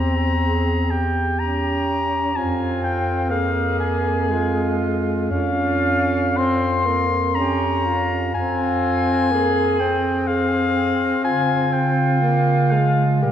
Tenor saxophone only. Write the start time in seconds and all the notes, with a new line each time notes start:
Already playing: C4
1.39 C#4
2.35 C4
3.30 A#3
4.30 G#3
5.30 C#4
6.38 C4
6.86 A#3
7.36 C#4
8.36 C4
9.32 A#3
9.80 C4
12.21 A#3
12.72 G#3
13.23 G3